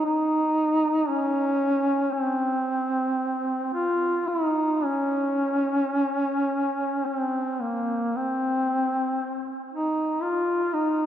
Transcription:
0, 0, Header, 1, 2, 480
1, 0, Start_track
1, 0, Tempo, 1054482
1, 968, Time_signature, 3, 2, 24, 8
1, 1456, Tempo, 1102941
1, 3376, Tempo, 1048951
1, 4955, End_track
2, 0, Start_track
2, 0, Title_t, "Duduk"
2, 0, Program_c, 0, 69
2, 24, Note_on_c, 0, 63, 97
2, 496, Note_on_c, 0, 61, 103
2, 502, Note_off_c, 0, 63, 0
2, 969, Note_on_c, 0, 60, 88
2, 976, Note_off_c, 0, 61, 0
2, 1688, Note_off_c, 0, 60, 0
2, 1691, Note_on_c, 0, 65, 91
2, 1928, Note_on_c, 0, 63, 91
2, 1934, Note_off_c, 0, 65, 0
2, 2173, Note_on_c, 0, 61, 98
2, 2179, Note_off_c, 0, 63, 0
2, 3136, Note_on_c, 0, 60, 76
2, 3142, Note_off_c, 0, 61, 0
2, 3378, Note_on_c, 0, 58, 73
2, 3385, Note_off_c, 0, 60, 0
2, 3628, Note_on_c, 0, 60, 85
2, 3635, Note_off_c, 0, 58, 0
2, 4228, Note_off_c, 0, 60, 0
2, 4343, Note_on_c, 0, 63, 81
2, 4573, Note_on_c, 0, 65, 84
2, 4579, Note_off_c, 0, 63, 0
2, 4805, Note_on_c, 0, 63, 91
2, 4812, Note_off_c, 0, 65, 0
2, 4955, Note_off_c, 0, 63, 0
2, 4955, End_track
0, 0, End_of_file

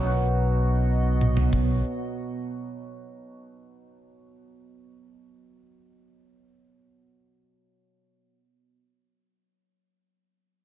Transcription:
0, 0, Header, 1, 5, 480
1, 0, Start_track
1, 0, Key_signature, 5, "major"
1, 0, Tempo, 631579
1, 8093, End_track
2, 0, Start_track
2, 0, Title_t, "Ambient pad"
2, 0, Program_c, 0, 92
2, 0, Note_on_c, 0, 47, 75
2, 0, Note_on_c, 0, 59, 71
2, 0, Note_on_c, 0, 75, 67
2, 0, Note_on_c, 0, 78, 88
2, 2460, Note_off_c, 0, 75, 0
2, 2461, Note_off_c, 0, 47, 0
2, 2461, Note_off_c, 0, 59, 0
2, 2461, Note_off_c, 0, 78, 0
2, 8093, End_track
3, 0, Start_track
3, 0, Title_t, "Hammered dulcimer"
3, 0, Program_c, 1, 15
3, 0, Note_on_c, 1, 47, 69
3, 0, Note_on_c, 1, 54, 70
3, 0, Note_on_c, 1, 59, 67
3, 0, Note_on_c, 1, 61, 53
3, 23, Note_on_c, 1, 63, 70
3, 50, Note_on_c, 1, 66, 76
3, 2657, Note_off_c, 1, 61, 0
3, 4248, Note_off_c, 1, 66, 0
3, 4681, Note_off_c, 1, 63, 0
3, 5343, Note_off_c, 1, 59, 0
3, 6325, Note_off_c, 1, 54, 0
3, 6640, Note_off_c, 1, 47, 0
3, 8093, End_track
4, 0, Start_track
4, 0, Title_t, "Fingered electric bass"
4, 0, Program_c, 2, 33
4, 0, Note_on_c, 2, 35, 78
4, 1370, Note_off_c, 2, 35, 0
4, 8093, End_track
5, 0, Start_track
5, 0, Title_t, "Drums"
5, 921, Note_on_c, 9, 47, 50
5, 997, Note_off_c, 9, 47, 0
5, 1039, Note_on_c, 9, 43, 64
5, 1115, Note_off_c, 9, 43, 0
5, 1161, Note_on_c, 9, 36, 72
5, 1237, Note_off_c, 9, 36, 0
5, 8093, End_track
0, 0, End_of_file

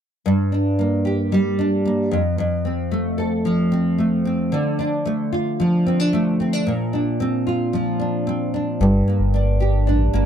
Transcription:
0, 0, Header, 1, 3, 480
1, 0, Start_track
1, 0, Tempo, 534283
1, 226, Time_signature, 4, 2, 24, 8
1, 9214, End_track
2, 0, Start_track
2, 0, Title_t, "Nylon-string guitar"
2, 0, Program_c, 0, 24
2, 230, Note_on_c, 0, 43, 63
2, 468, Note_on_c, 0, 62, 44
2, 708, Note_on_c, 0, 58, 53
2, 943, Note_on_c, 0, 67, 47
2, 1186, Note_on_c, 0, 55, 53
2, 1415, Note_off_c, 0, 62, 0
2, 1426, Note_on_c, 0, 62, 50
2, 1656, Note_off_c, 0, 58, 0
2, 1666, Note_on_c, 0, 58, 47
2, 1896, Note_off_c, 0, 43, 0
2, 1899, Note_on_c, 0, 41, 63
2, 1951, Note_off_c, 0, 67, 0
2, 1953, Note_off_c, 0, 55, 0
2, 1953, Note_off_c, 0, 58, 0
2, 1953, Note_off_c, 0, 62, 0
2, 2130, Note_off_c, 0, 41, 0
2, 2141, Note_on_c, 0, 41, 61
2, 2380, Note_on_c, 0, 60, 47
2, 2618, Note_on_c, 0, 57, 55
2, 2857, Note_on_c, 0, 69, 52
2, 3100, Note_on_c, 0, 53, 57
2, 3329, Note_off_c, 0, 60, 0
2, 3339, Note_on_c, 0, 60, 58
2, 3576, Note_off_c, 0, 57, 0
2, 3579, Note_on_c, 0, 57, 47
2, 3811, Note_off_c, 0, 60, 0
2, 3822, Note_on_c, 0, 60, 50
2, 4060, Note_on_c, 0, 50, 62
2, 4062, Note_off_c, 0, 41, 0
2, 4110, Note_off_c, 0, 60, 0
2, 4302, Note_on_c, 0, 62, 46
2, 4537, Note_off_c, 0, 57, 0
2, 4541, Note_on_c, 0, 57, 55
2, 4780, Note_off_c, 0, 69, 0
2, 4784, Note_on_c, 0, 65, 48
2, 5024, Note_off_c, 0, 53, 0
2, 5028, Note_on_c, 0, 53, 57
2, 5266, Note_off_c, 0, 62, 0
2, 5269, Note_on_c, 0, 60, 55
2, 5386, Note_off_c, 0, 60, 0
2, 5386, Note_on_c, 0, 62, 39
2, 5496, Note_off_c, 0, 57, 0
2, 5506, Note_on_c, 0, 57, 52
2, 5746, Note_off_c, 0, 62, 0
2, 5749, Note_on_c, 0, 60, 47
2, 5867, Note_off_c, 0, 60, 0
2, 5867, Note_on_c, 0, 62, 36
2, 5985, Note_off_c, 0, 50, 0
2, 5989, Note_on_c, 0, 46, 66
2, 6034, Note_off_c, 0, 57, 0
2, 6034, Note_off_c, 0, 62, 0
2, 6227, Note_on_c, 0, 62, 48
2, 6470, Note_on_c, 0, 60, 57
2, 6704, Note_off_c, 0, 65, 0
2, 6708, Note_on_c, 0, 65, 46
2, 6944, Note_off_c, 0, 53, 0
2, 6947, Note_on_c, 0, 53, 60
2, 7179, Note_off_c, 0, 62, 0
2, 7183, Note_on_c, 0, 62, 52
2, 7418, Note_off_c, 0, 60, 0
2, 7429, Note_on_c, 0, 60, 53
2, 7667, Note_off_c, 0, 62, 0
2, 7671, Note_on_c, 0, 62, 46
2, 7910, Note_off_c, 0, 46, 0
2, 7912, Note_on_c, 0, 43, 62
2, 7957, Note_off_c, 0, 53, 0
2, 7957, Note_off_c, 0, 60, 0
2, 7957, Note_off_c, 0, 65, 0
2, 7958, Note_off_c, 0, 62, 0
2, 8153, Note_on_c, 0, 58, 47
2, 8389, Note_on_c, 0, 62, 55
2, 8627, Note_on_c, 0, 67, 48
2, 8856, Note_off_c, 0, 62, 0
2, 8867, Note_on_c, 0, 62, 51
2, 9094, Note_off_c, 0, 58, 0
2, 9105, Note_on_c, 0, 58, 64
2, 9214, Note_off_c, 0, 43, 0
2, 9214, Note_off_c, 0, 58, 0
2, 9214, Note_off_c, 0, 62, 0
2, 9214, Note_off_c, 0, 67, 0
2, 9214, End_track
3, 0, Start_track
3, 0, Title_t, "Sub bass"
3, 0, Program_c, 1, 38
3, 7911, Note_on_c, 1, 31, 99
3, 8107, Note_off_c, 1, 31, 0
3, 8264, Note_on_c, 1, 31, 81
3, 8869, Note_on_c, 1, 33, 83
3, 8882, Note_off_c, 1, 31, 0
3, 9066, Note_off_c, 1, 33, 0
3, 9112, Note_on_c, 1, 31, 80
3, 9214, Note_off_c, 1, 31, 0
3, 9214, End_track
0, 0, End_of_file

